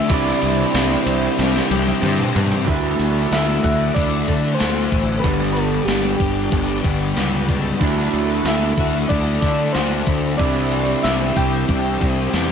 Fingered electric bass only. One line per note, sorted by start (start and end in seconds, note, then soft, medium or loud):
0.10 0.31 C2 medium
0.43 0.63 C2 medium
0.74 0.95 C2 medium
1.06 1.27 C2 medium
1.39 1.60 C2 medium
1.70 1.91 C2 medium
2.02 2.23 G2 medium
2.35 2.56 G2 medium
2.68 2.94 D2 medium
2.99 3.26 D2 medium
3.31 3.58 D2 medium
3.65 3.91 D2 medium
3.96 4.22 D2 medium
4.28 4.54 D3 medium
4.61 4.87 D2 medium
4.93 5.19 A1 medium
5.25 5.78 G1 medium
5.87 6.14 G1 medium
6.20 6.47 G1 medium
6.52 6.79 G1 medium
6.84 7.11 G1 medium
7.17 7.71 C#2 medium
7.81 8.08 D2 medium
8.14 8.41 D2 medium
8.45 8.72 D2 medium
8.77 9.05 D2 medium
9.10 9.37 D2 medium
9.42 9.70 D3 medium
9.75 10.02 D2 medium
10.07 10.34 D2 medium
10.39 10.93 C2 medium
11.04 11.31 C2 medium
11.36 11.63 C2 medium
11.70 11.96 C2 medium
12.01 12.28 C2 medium
12.33 12.52 E2 medium